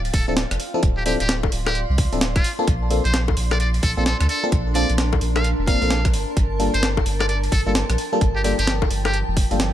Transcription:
Already playing: D1 F4 D5 F5 G5 A5 C6
0.05 open hi-hat
0.14 D1 A4, kick, open hi-hat
0.28 D1 F3 C4 D4 E4 A4
0.37 snare, closed hi-hat
0.51 F1, cross-stick, closed hi-hat
0.60 open hi-hat
0.74 F3 C4 D4 E4 A4
0.83 D1, kick, closed hi-hat
0.97 G4
1.06 F3 C4 D4 E4 G4 A4, open hi-hat
1.20 D1 G4, closed hi-hat
1.29 snare, closed hi-hat
1.43 kick, high bongo
1.52 D1, open hi-hat
1.67 G4, cross-stick, closed hi-hat, high bongo
1.75 closed hi-hat
1.90 C2
1.98 kick, open hi-hat
2.13 D1 F3 C4 D4 E4 A4, open hi-hat
2.21 snare, closed hi-hat
2.36 F4, kick, cross-stick, closed hi-hat
2.44 D4, open hi-hat
2.59 A#3 C4 D4 F4 A4 A5
2.67 A#1, kick, closed hi-hat
2.88 A#3 C4 D4 F4 A4 A#4, open hi-hat
3.05 A#1 C5, closed hi-hat
3.14 snare, closed hi-hat
3.28 kick, high bongo
3.37 A#1, open hi-hat
3.51 D5, cross-stick, closed hi-hat, high bongo
3.60 D5, closed hi-hat
3.74 open hi-hat
3.83 A#1 A4, kick, open hi-hat
3.97 A#1 A#3 C4 D4 F4 A4
4.06 A4, snare, closed hi-hat
4.21 D2 A4, cross-stick, closed hi-hat
4.29 A4, open hi-hat
4.44 A#3 C4 D4 F4 A4
4.52 A#1, kick, closed hi-hat
4.75 A#3 C4 D4 F4 A4 D5, open hi-hat
4.90 A#1, closed hi-hat
4.98 snare, closed hi-hat
5.13 kick, high bongo
5.21 A#1, open hi-hat
5.36 F5, cross-stick, closed hi-hat, high bongo
5.44 closed hi-hat
5.59 F1
5.67 A#3 C4 D4 F4 A#4 F5, kick, open hi-hat
5.82 A#1 A#3 C4 D4 F4 A4, open hi-hat
5.90 snare, closed hi-hat
6.05 kick, cross-stick, closed hi-hat
6.13 G1 F3, open hi-hat
6.37 G1, kick, closed hi-hat
6.60 G3 A#3 D4 F4 A4, open hi-hat
6.74 G1 C5 G5, closed hi-hat
6.83 snare, closed hi-hat
6.97 kick, high bongo
7.06 G1, open hi-hat
7.20 D5, cross-stick, closed hi-hat, high bongo
7.29 D5, closed hi-hat
7.44 open hi-hat
7.52 G1 A4, kick, open hi-hat
7.66 G1 G3 A#3 D4 F4 A4
7.75 snare, closed hi-hat
7.90 A#1, cross-stick, closed hi-hat
7.98 open hi-hat
8.13 G3 A#3 D4 F4 A4
8.21 G1, kick, closed hi-hat
8.36 G4
8.44 G3 A#3 D4 F4 G4 A4, open hi-hat
8.59 G1 G4, closed hi-hat
8.67 snare, closed hi-hat
8.82 kick, high bongo
8.91 G1, open hi-hat
9.05 G4, cross-stick, closed hi-hat, high bongo
9.14 closed hi-hat
9.28 F1
9.37 kick, open hi-hat
9.51 G1 G3 A#3 D4 F4 A4, open hi-hat
9.60 snare, closed hi-hat

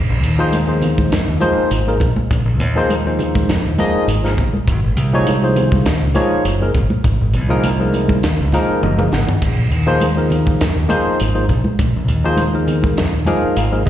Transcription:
0.10 A#1
0.23 D#2, closed hi-hat
0.38 F3 A#3 D#4 G#4 C5
0.52 closed hi-hat, high conga
0.67 F3 A#3 D#4 G#4 C5
0.82 closed hi-hat, low conga
0.98 kick, high conga
1.12 F2, snare, closed hi-hat
1.28 D#2
1.40 F3 A#3 D#4 G#4 C5, closed hi-hat, high conga
1.58 muted fingered electric bass stroke
1.71 G#1, closed hi-hat
1.87 F3 A#3 D#4 G#4 A#4
2.00 A#1 G#4 D#5, kick, closed hi-hat, low conga
2.16 muted fingered electric bass stroke, high conga
2.31 A#1, kick, closed hi-hat
2.46 A#1
2.60 D#2, closed hi-hat
2.75 F3 A#3 D#4 G#4 C5
2.90 closed hi-hat, high conga
3.06 F3 A#3 D#4 G#4 C5
3.19 closed hi-hat, low conga
3.35 kick, high conga
3.49 F2, snare, closed hi-hat
3.65 D#2
3.78 F3 A#3 D#4 G#4 D#5, closed hi-hat, high conga
3.95 muted fingered electric bass stroke
4.08 G#1, closed hi-hat
4.23 F3 A#3 D#4 G#4 A#4, snare
4.37 A#1 G#4 C5, kick, closed hi-hat, low conga
4.53 muted fingered electric bass stroke, high conga
4.67 G#1, kick, closed hi-hat
4.84 G#1
4.97 C2, closed hi-hat
5.13 F3 A#3 D#4 G#4 C#5
5.27 closed hi-hat, high conga
5.43 F3 A#3 D#4 G#4 C5
5.56 closed hi-hat, low conga
5.72 kick, high conga
5.86 D#2, snare, closed hi-hat
6.02 C#2
6.14 F3 A#3 D#4 G#4 C#5, closed hi-hat, high conga
6.32 muted fingered electric bass stroke
6.45 F#1, closed hi-hat
6.61 F3 A#3 D#4 G#4 A#4
6.75 G#1 G#4 C#5, kick, closed hi-hat, low conga
6.90 high conga
7.04 G#1, kick, closed hi-hat
7.21 G#1
7.33 C2, closed hi-hat, low conga
7.49 F3 A#3 D#4 G#4 A#4
7.64 closed hi-hat, high conga
7.80 F3 A#3 D#4 G#4 A#4
7.93 closed hi-hat, high conga
8.08 kick, high conga
8.23 D#2, snare, closed hi-hat
8.40 C#2
8.52 F3 A#3 D#4 G#4 A#4, closed hi-hat, high conga, low conga
8.69 muted fingered electric bass stroke
8.82 F#1 D#5, high tom, high conga
8.98 F3 A#3 D#4 G#4 A#4, mid tom, high conga
9.12 G#1 G#4 D#5 F#5, snare, low conga
9.27 floor tom, low conga
9.42 A#1, kick, closed hi-hat, crash
9.58 A#1
9.71 D#2, closed hi-hat
9.86 F3 A#3 D#4 G#4 C5
10.00 closed hi-hat, high conga
10.16 F3 A#3 D#4 G#4 A#4
10.30 closed hi-hat, low conga
10.46 kick, high conga
10.61 F2, snare, closed hi-hat
10.77 D#2
10.89 F3 A#3 D#4 G#4 C5, closed hi-hat, high conga
11.07 muted fingered electric bass stroke
11.20 G#1, closed hi-hat
11.34 F3 A#3 D#4 G#4 C5
11.49 A#1 G#4 A#4, kick, closed hi-hat, low conga
11.64 muted fingered electric bass stroke, high conga
11.79 A#1, kick, closed hi-hat
11.96 A#1
12.08 D#2, closed hi-hat
12.24 F3 A#3 D#4 G#4 C5
12.37 closed hi-hat, high conga
12.53 F3 A#3 D#4 G#4 A#4
12.67 closed hi-hat, low conga
12.82 kick, high conga
12.98 F2, snare, closed hi-hat
13.14 D#2
13.26 F3 A#3 D#4 G#4 A#4 G#5, closed hi-hat, high conga
13.44 muted fingered electric bass stroke
13.57 G#1 F5, closed hi-hat
13.71 F3 A#3 D#4 G#4 A#4
13.85 G#4 D#5, low conga

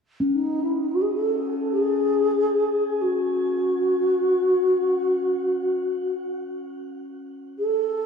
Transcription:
0.20 C#4
0.33 D#4
0.63 E4
0.81 D#4
0.91 F#4
1.01 G#4
1.13 A4
1.71 G#4
3.01 F#4
7.58 A4

